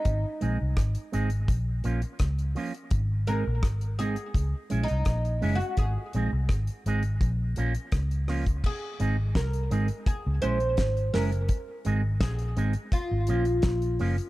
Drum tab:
CC |----------------|----------------|----------------|x---------------|
HH |x-x-xxxxx-xxxxox|x-x-xxxxx-xxxxox|x-x-xxxxx-xxxxox|--x-xxxxx-xxxxox|
SD |----r-------r---|----r-------r---|----r-------r-r-|----o-------o-o-|
BD |o---o---o---o---|o---o---o---o---|o---o---o---o--o|o---o---o---o---|

CC |----------------|
HH |x-x-xxxxx-xxxxox|
SD |----o-------o---|
BD |o---o---o---o---|